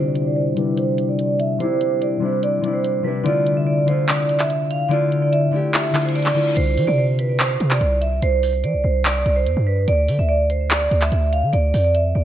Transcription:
Already playing: C3 G3 D4 E4 C5
0.15 closed hi-hat
0.25 D5
0.36 C5
0.55 C3 G3 D4 B4, closed hi-hat
0.60 E4
0.77 C5, closed hi-hat
0.98 closed hi-hat
1.09 D5
1.19 closed hi-hat
1.39 E5, closed hi-hat
1.59 C3 G3 D4 C5, closed hi-hat
1.63 E4
1.81 closed hi-hat
1.91 C5
2.02 D5, closed hi-hat
2.20 C3 G3 D4 C5
2.24 E4
2.43 D5, closed hi-hat
2.61 C3 G3 D4, closed hi-hat
2.66 E4
2.74 C5
2.84 closed hi-hat
3.03 C3 G3 D4 B4
3.08 E4
3.23 D3 A3 E4 D5, closed hi-hat
3.28 F4
3.47 closed hi-hat
3.57 E5
3.67 D5
3.86 D3 A3 E4 C5, closed hi-hat
3.91 F4
4.09 D5, clap, closed hi-hat
4.29 closed hi-hat
4.39 E5, clap
4.50 closed hi-hat
4.71 F5, closed hi-hat
4.88 D3 A3 E4 D5, closed hi-hat
4.93 F4
5.12 closed hi-hat
5.22 D5
5.32 E5, closed hi-hat
5.51 D3 A3 E4 D5
5.56 G4
5.74 E5, clap, closed hi-hat, reverse cymbal
5.93 D3 A3 E4, clap, closed hi-hat
5.97 F4
6.02 C5, closed hi-hat
6.09 closed hi-hat
6.15 D5, closed hi-hat
6.22 clap, closed hi-hat
6.29 closed hi-hat
6.34 D3 A3 E4
6.39 F4
6.57 C2 C5, closed hi-hat, crash
6.78 E3, open hi-hat
6.87 C3 D5
6.98 C5
7.19 B4, closed hi-hat
7.39 C5, clap, closed hi-hat
7.60 C3, closed hi-hat
7.71 D5, clap
7.81 C2, closed hi-hat
8.01 E5, closed hi-hat
8.22 C2 C5, closed hi-hat
8.43 open hi-hat
8.53 C5
8.64 E3 D5, closed hi-hat
8.74 C2
8.84 C2 C5
9.05 D5, clap, closed hi-hat
9.26 C2, closed hi-hat
9.36 C5
9.46 E2, closed hi-hat
9.57 G2
9.67 B4
9.88 D2 D5, closed hi-hat
10.09 D3, open hi-hat
10.19 D2 E5
10.29 D5
10.50 C5, closed hi-hat
10.71 D5, clap, closed hi-hat
10.91 D2, closed hi-hat
11.02 E5, clap
11.12 D2, closed hi-hat
11.33 F5, closed hi-hat
11.43 D3
11.53 D2 D5, closed hi-hat
11.74 F2, open hi-hat
11.84 D5
11.95 E5, closed hi-hat
12.15 D2 D5

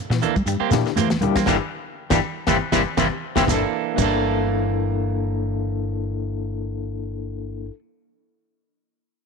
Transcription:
0.10 A#2 E3, muted clean electric guitar stroke, snare, closed hi-hat
0.21 E3 A#3 D4 A4, closed hi-hat, high conga, shekere
0.36 G3, muted clean electric guitar stroke, kick, shekere
0.46 G2 G3, muted clean electric guitar stroke, closed hi-hat, high conga, shekere
0.60 A#3 C4 G4, muted fingered electric bass stroke, muted clean electric guitar stroke
0.70 A#2 E3 A#3 D4 E4 G4, snare, closed hi-hat, high conga, shekere
0.85 D3, snare, shekere
0.96 E3 A3 A#3 C4 G4, snare, closed hi-hat, high conga, shekere
1.10 muted clean electric guitar stroke, snare, closed hi-hat, high conga
1.21 D3 G3 A#3 D4 E4 G4, muted clean electric guitar stroke, closed hi-hat, low conga, shekere
1.36 E3 A#3 C4, kick, snare, closed hi-hat, shekere
1.46 G1 D3 E3 G3 A#3 D4 E4 G4, kick, snare, high conga, shekere
2.10 G1 D3 E3 G3 A#3 D4 E4 G4, kick, snare, high conga, shekere
2.47 G1 C3 E3 G3 A#3 C4 E4 G4, kick, snare, high conga, shekere
2.72 G1 C3 E3 G3 A#3 C4 E4 G4, kick, snare, high conga, shekere
2.97 G1 C3 E3 G3 A#3 C4 E4 G4, kick, snare, high conga, shekere
3.36 G1 C3 E3 G3 A#3 C4 E4 G4, kick, snare, high conga, shekere
3.44 G1 E3 A#3 D4, kick, low conga
3.49 G2 A#3 D4 E4 A4, snare, shekere
3.54 A4
3.94 G1 G2 E3 A#3 D4, low conga
3.98 A#3 D4 E4, kick, crash, shekere
4.02 A4

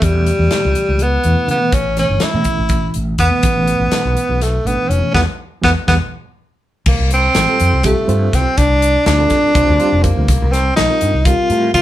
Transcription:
0.02 E2 G3, kick, closed hi-hat
0.14 B2 E3 A3 C#4
0.26 closed hi-hat
0.39 E2
0.51 snare, closed hi-hat
0.65 C#2
0.75 closed hi-hat
0.89 C#2
0.99 B3, closed hi-hat
1.24 E2 B2 E3 A3 E4, closed hi-hat
1.48 C#3 B3, closed hi-hat
1.60 B2 E3 A3 B3
1.72 A1 C#4, kick, closed hi-hat
1.97 B2 E3 A3 C#4, snare, closed hi-hat
2.09 G1
2.20 E4, snare, closed hi-hat
2.34 A2 B2 E3 A3 C#4
2.44 kick, closed hi-hat
2.59 A1
2.69 kick, closed hi-hat
2.94 A1, closed hi-hat
3.18 E2 B3, kick, closed hi-hat
3.30 B2 E3 A3 B3
3.43 A1, kick, closed hi-hat
3.55 B2 E3 A3 C#4
3.67 closed hi-hat
3.80 A1
3.92 snare, closed hi-hat
4.05 B1
4.17 closed hi-hat
4.29 B1
4.41 A3, snare, closed hi-hat
4.65 A1 B2 E3 A3 B3 D4, closed hi-hat
4.89 F1 C#4, closed hi-hat
5.02 B2 E3 A3 C#4
5.13 E2 E3 G3 B3, kick, snare
5.61 E2 E3 G3 B3, kick, snare
5.87 E2 E3 G3 B3, kick, snare
6.86 C2 A#3, kick, crash
6.99 C2
7.11 C4, closed hi-hat
7.35 A1, snare, closed hi-hat
7.47 G3 C4 F4 A4
7.60 F2, closed hi-hat
7.73 C2
7.83 G3 A3 C4 F4 G4, kick, closed hi-hat
8.07 G2 G3 C4 F4 C5, closed hi-hat
8.33 C2 C4, kick, snare, closed hi-hat
8.57 C2 D4, kick, closed hi-hat
8.82 closed hi-hat
9.06 D2 D4, snare, closed hi-hat
9.18 G3 C4 F4 A4
9.30 kick, snare, closed hi-hat
9.44 muted fretless electric bass stroke
9.55 C2 G3 C4 F4 C5, kick, closed hi-hat
9.69 D2
9.80 G3 C4 F4 C5, closed hi-hat
9.92 F1
10.03 A#3, kick, closed hi-hat
10.17 D2
10.28 C2, kick, closed hi-hat
10.42 C2
10.52 C4, snare, closed hi-hat
10.76 A#1 D#4, snare, closed hi-hat
10.89 G3 C4 F4 A#4
11.01 G2, closed hi-hat
11.14 C2
11.25 G3 C4 F4 A#4, kick, closed hi-hat
11.50 A2 G3 C4 F4 A#4, closed hi-hat
11.74 C2 F4, kick, snare, closed hi-hat

